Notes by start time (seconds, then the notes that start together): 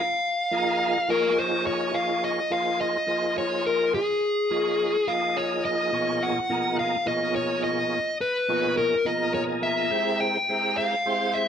Already playing: F5
0.51 F3 A#3 D#4 G#4 A#4
1.08 F3 A#3 D#4 G#4 A#4 C#5
1.38 C5
1.67 C#5
1.93 F3 A#3 D#4 G#4 C#5 F5
2.24 D#5
2.50 F3 A#3 D#4 G#4 C5 F5
2.81 D#5
3.07 F3 A#3 D#4 G#4 C5
3.38 C#5
3.66 A#4
3.94 G#4
4.50 F3 A#3 D#4 G#4 C#5
5.07 F3 A#3 D#4 G#4 D#5 F5
5.37 C#5
5.65 D#5
5.92 B2 F3 A#3 D#4 G#4 C#5
6.23 F#5
6.50 B2 F3 A#3 D#4 G#4 A#4
6.79 F5
7.06 B2 F3 A#3 D#4 G#4 C#5 D#5
7.36 C#5
7.64 D#5
8.21 B4
8.48 B2 F3 A#3 D#4 G#4 C#5
8.77 A#4
9.05 B2 F3 A#3 D#4 G#4 A#4 D#5
9.34 C#5
9.63 E5
9.91 G#3 C4 E4 G4 A#4
10.20 G5
10.49 G#3 C4 E4 G4 A#4
10.78 F5
11.05 G#3 C4 E4 G4 C5
11.34 E5